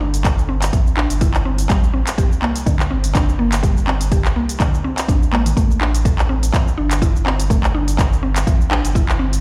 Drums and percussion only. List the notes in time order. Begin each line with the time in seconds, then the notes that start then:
0.14 closed hi-hat, shaker
0.25 kick, clap, closed hi-hat, shaker
0.39 shaker
0.62 clap, closed hi-hat, shaker
0.73 kick, closed hi-hat, shaker
0.87 shaker
0.97 clap
1.10 closed hi-hat, shaker
1.21 kick, closed hi-hat, shaker
1.34 clap, shaker
1.58 closed hi-hat, shaker
1.70 kick, clap, closed hi-hat, shaker
1.83 shaker
2.07 clap, closed hi-hat, shaker
2.18 kick, closed hi-hat, shaker
2.32 shaker
2.42 clap
2.56 closed hi-hat, shaker
2.67 kick, closed hi-hat, shaker
2.80 clap, shaker
3.04 closed hi-hat, shaker
3.15 kick, clap, closed hi-hat, shaker
3.29 shaker
3.52 clap, closed hi-hat, shaker
3.63 kick, closed hi-hat, shaker
3.77 shaker
3.88 clap
4.01 closed hi-hat, shaker
4.12 kick, closed hi-hat, shaker
4.25 clap, shaker
4.49 closed hi-hat, shaker
4.60 kick, clap, closed hi-hat, shaker
4.74 shaker
4.98 clap, closed hi-hat, shaker
5.08 kick, closed hi-hat, shaker
5.23 shaker
5.33 clap, high tom
5.46 closed hi-hat, mid tom, shaker
5.57 kick, closed hi-hat, shaker
5.71 shaker
5.81 clap
5.95 closed hi-hat, shaker
6.05 kick, closed hi-hat, shaker
6.19 clap, shaker
6.43 closed hi-hat, shaker
6.54 kick, clap, closed hi-hat, shaker
6.68 shaker
6.91 clap, closed hi-hat, shaker
7.02 kick, closed hi-hat, shaker
7.16 shaker
7.26 clap
7.40 closed hi-hat, shaker
7.50 kick, closed hi-hat, shaker
7.64 clap, shaker
7.88 closed hi-hat, shaker
7.99 kick, clap, closed hi-hat, shaker
8.13 shaker
8.36 clap, closed hi-hat, shaker
8.47 kick, closed hi-hat, shaker
8.61 shaker
8.71 clap
8.85 closed hi-hat, shaker
8.95 kick, closed hi-hat, shaker
9.09 clap, shaker
9.33 closed hi-hat, shaker